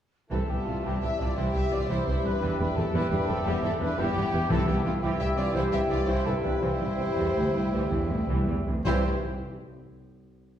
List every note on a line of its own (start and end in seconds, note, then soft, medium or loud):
0.30 0.38 C2 soft
0.30 4.47 G2 soft
0.30 0.48 E3 soft
0.30 4.47 E3 soft
0.30 0.48 G3 soft
0.30 4.47 G3 soft
0.30 0.48 C4 soft
0.30 0.80 E4 soft
0.30 4.47 G4 soft
0.30 0.48 A4 medium
0.30 0.39 A4 medium
0.30 2.38 E5 soft
0.30 1.33 A5 soft
0.48 0.56 C2 soft
0.48 0.56 E3 soft
0.48 0.56 G3 soft
0.48 0.66 B3 soft
0.48 0.67 G4 medium
0.48 0.67 G4 soft
0.66 0.74 C2 soft
0.66 0.74 C3 soft
0.66 0.74 E3 soft
0.66 0.84 A3 soft
0.66 0.84 F4 soft
0.66 0.84 F4 medium
0.83 0.91 C2 soft
0.83 0.92 C2 medium
0.83 1.01 E3 soft
0.83 1.00 G3 soft
0.83 1.01 C4 medium
0.83 1.38 E4 soft
0.83 1.02 G4 medium
0.83 1.02 G4 soft
1.02 1.09 C2 soft
1.02 1.09 E3 soft
1.02 1.09 G3 soft
1.02 1.09 G4 medium
1.02 1.19 E5 medium
1.02 1.20 E5 medium
1.19 1.27 C2 soft
1.19 1.27 C3 soft
1.19 1.27 E3 soft
1.19 1.37 F4 medium
1.19 1.37 D5 medium
1.36 1.44 C2 medium
1.36 1.53 E3 soft
1.36 1.53 G3 medium
1.36 1.54 E4 medium
1.36 2.92 G4 soft
1.36 1.54 C5 medium
1.36 1.44 C5 medium
1.36 1.90 G5 soft
1.54 1.61 C2 soft
1.54 1.62 C2 soft
1.54 1.61 E3 soft
1.54 1.61 G3 soft
1.54 1.72 G4 medium
1.54 1.72 E5 medium
1.71 1.78 C2 soft
1.71 1.79 C2 soft
1.71 1.78 C3 soft
1.71 1.78 E3 soft
1.71 1.90 F4 medium
1.71 1.79 D5 medium
1.71 1.90 D5 medium
1.89 1.96 C2 medium
1.89 1.97 C2 medium
1.89 2.05 E3 soft
1.89 2.05 G3 medium
1.89 2.07 E4 medium
1.89 2.06 C5 medium
1.89 2.07 C5 medium
1.89 2.42 E5 soft
2.06 2.14 C2 soft
2.06 2.13 E3 soft
2.06 2.13 G3 soft
2.06 2.25 E4 medium
2.06 2.24 C5 medium
2.06 2.15 C5 medium
2.24 2.31 C2 soft
2.24 2.31 C3 soft
2.24 2.31 E3 soft
2.24 2.59 D4 medium
2.24 2.58 B4 medium
2.24 2.59 B4 medium
2.42 2.49 E1 medium
2.42 2.49 E2 medium
2.42 2.58 E3 medium
2.42 2.58 G3 medium
2.42 4.00 E5 medium
2.42 2.93 G5 soft
2.59 2.67 E1 soft
2.59 2.66 E2 soft
2.59 2.66 E3 soft
2.59 2.66 G3 soft
2.59 2.77 D4 medium
2.59 2.67 B4 medium
2.59 2.77 B4 medium
2.77 2.84 E1 soft
2.77 2.84 E2 soft
2.77 2.84 E3 soft
2.77 2.85 C4 medium
2.77 2.94 A4 medium
2.93 3.01 E1 medium
2.93 3.01 E2 medium
2.93 3.10 E3 medium
2.93 3.10 G3 medium
2.93 3.11 E4 medium
2.93 4.00 G4 medium
2.93 3.10 B4 medium
2.93 3.02 B4 medium
2.93 3.45 G5 soft
3.11 3.18 E1 soft
3.11 3.18 E2 medium
3.11 3.18 E3 soft
3.11 3.18 G3 soft
3.11 3.28 D4 medium
3.11 3.28 B4 medium
3.11 3.29 B4 medium
3.28 3.36 E1 soft
3.28 3.36 E2 medium
3.28 3.36 E3 soft
3.28 3.46 C4 medium
3.28 3.46 A4 medium
3.46 3.53 E1 medium
3.46 3.53 E2 medium
3.46 3.62 E3 medium
3.46 3.62 G3 medium
3.46 3.63 B3 medium
3.46 3.54 G4 medium
3.46 3.64 G4 medium
3.46 3.97 E5 medium
3.63 3.71 E1 soft
3.63 3.70 E2 medium
3.63 3.70 E3 medium
3.63 3.70 G3 medium
3.63 3.81 C4 medium
3.63 3.80 A4 medium
3.63 3.72 A4 medium
3.80 3.88 E1 medium
3.80 3.88 E2 medium
3.80 3.88 E3 medium
3.80 3.98 D4 medium
3.80 3.98 B4 medium
3.80 3.99 B4 medium
3.98 4.06 E1 medium
3.98 4.06 E2 medium
3.98 4.15 E3 medium
3.98 4.15 G3 medium
3.98 4.49 B3 medium
3.98 4.50 E4 medium
3.98 4.51 G4 medium
3.98 4.50 E5 medium
3.98 4.49 G5 medium
4.16 4.23 E1 medium
4.16 4.23 E2 soft
4.16 4.23 E3 medium
4.16 4.23 G3 medium
4.33 4.40 E1 medium
4.33 4.40 E2 medium
4.33 4.41 E3 medium
4.49 4.57 C2 medium
4.49 4.58 C2 medium
4.49 8.62 G2 medium
4.49 4.99 C3 medium
4.49 4.66 E3 medium
4.49 8.62 E3 medium
4.49 4.66 G3 medium
4.49 8.62 G3 medium
4.49 4.67 C4 medium
4.49 4.99 E4 medium
4.49 8.62 G4 medium
4.49 4.68 A4 loud
4.49 4.68 A4 medium
4.49 4.99 E5 medium
4.49 4.99 G5 medium
4.67 4.75 C2 medium
4.67 4.74 E3 soft
4.67 4.74 G3 soft
4.67 4.85 B3 medium
4.67 4.85 G4 medium
4.67 4.76 G4 medium
4.85 4.92 C2 soft
4.85 4.92 C2 medium
4.85 4.92 C3 medium
4.85 4.92 E3 soft
4.85 4.92 A3 medium
4.85 5.03 F4 medium
4.85 4.93 F4 medium
5.02 5.09 C2 medium
5.02 5.10 C2 medium
5.02 5.19 E3 medium
5.02 5.18 G3 medium
5.02 5.09 C4 medium
5.02 5.53 E4 medium
5.02 5.10 G4 medium
5.02 5.20 G4 medium
5.02 5.54 E5 medium
5.02 5.53 G5 medium
5.19 5.27 C2 medium
5.19 5.27 C2 soft
5.19 5.27 E3 soft
5.19 5.27 G3 soft
5.19 5.27 G4 medium
5.19 5.37 E5 medium
5.19 5.27 E5 medium
5.36 5.44 C2 soft
5.36 5.44 C3 soft
5.36 5.44 E3 soft
5.36 5.55 F4 medium
5.36 5.54 D5 medium
5.36 5.44 D5 medium
5.54 5.61 C2 medium
5.54 5.62 C2 medium
5.54 5.70 E3 medium
5.54 5.71 G3 medium
5.54 6.06 E4 medium
5.54 5.63 E4 medium
5.54 5.61 C5 medium
5.54 5.72 C5 medium
5.54 6.07 E5 medium
5.54 6.07 G5 medium
5.71 5.79 C2 soft
5.71 5.79 E3 medium
5.71 5.79 G3 medium
5.71 5.79 G4 medium
5.71 5.89 E5 medium
5.71 5.79 E5 medium
5.89 5.96 C2 soft
5.89 5.97 C2 soft
5.89 5.97 C3 soft
5.89 5.97 E3 soft
5.89 5.99 F4 medium
5.89 6.08 D5 medium
5.89 6.07 D5 medium
6.06 6.14 C2 medium
6.06 6.15 C2 medium
6.06 6.24 E3 medium
6.06 6.24 G3 medium
6.06 6.60 E4 soft
6.06 6.26 E4 medium
6.06 6.26 C5 medium
6.06 6.61 E5 medium
6.06 6.61 G5 medium
6.25 6.33 C2 soft
6.25 6.32 E3 medium
6.25 6.32 G3 soft
6.25 6.34 C4 medium
6.25 6.44 A4 medium
6.25 6.33 A4 medium
6.42 6.51 C2 soft
6.42 6.51 C3 soft
6.42 6.51 E3 soft
6.42 6.52 D4 soft
6.42 6.61 B4 medium
6.42 6.62 B4 medium
6.61 6.69 C2 medium
6.61 6.70 C2 medium
6.61 6.79 E3 medium
6.61 6.79 G3 medium
6.61 8.61 E4 medium
6.61 8.25 E4 medium
6.61 8.25 C5 medium
6.61 8.28 C5 medium
6.61 8.62 E5 medium
6.61 8.62 G5 soft
6.80 6.87 C2 soft
6.80 6.88 C2 soft
6.80 6.88 E3 soft
6.80 6.88 G3 soft
6.98 7.05 C2 soft
6.98 7.06 C2 soft
6.98 7.06 C3 soft
6.98 7.06 E3 soft
7.16 7.24 C2 medium
7.16 7.34 E2 medium
7.16 7.34 E3 medium
7.16 7.34 G3 medium
7.35 7.43 C2 soft
7.35 7.53 D2 medium
7.35 7.43 E3 soft
7.35 7.43 G3 soft
7.53 7.72 C2 medium
7.53 7.61 C2 soft
7.53 7.61 C3 soft
7.53 7.61 E3 soft
7.71 7.79 C2 medium
7.71 7.90 D2 medium
7.71 7.89 E3 medium
7.71 7.89 G3 medium
7.90 7.98 C2 soft
7.90 8.09 E2 medium
7.90 7.98 E3 soft
7.90 7.99 G3 soft
8.08 8.17 C2 soft
8.08 8.28 D2 medium
8.08 8.16 C3 soft
8.08 8.16 E3 soft
8.28 8.36 C2 medium
8.28 8.47 C2 medium
8.28 8.45 E3 medium
8.28 8.46 G3 medium
8.47 8.55 C2 soft
8.47 8.66 E2 medium
8.47 8.55 E3 soft
8.47 8.55 G3 soft
8.66 8.74 C2 soft
8.66 8.84 D2 medium
8.66 8.74 C3 soft
8.66 8.74 E3 soft
8.85 9.06 C2 medium
8.85 9.01 G2 medium
8.85 9.02 C3 medium
8.85 9.05 E3 medium
8.85 9.01 E3 medium
8.85 9.00 G3 medium
8.85 9.05 C4 medium
8.85 9.01 E4 medium
8.85 9.00 G4 medium
8.85 9.06 G4 medium
8.85 9.06 C5 medium
8.85 9.00 C5 medium
8.85 9.01 E5 medium
8.85 9.06 G5 medium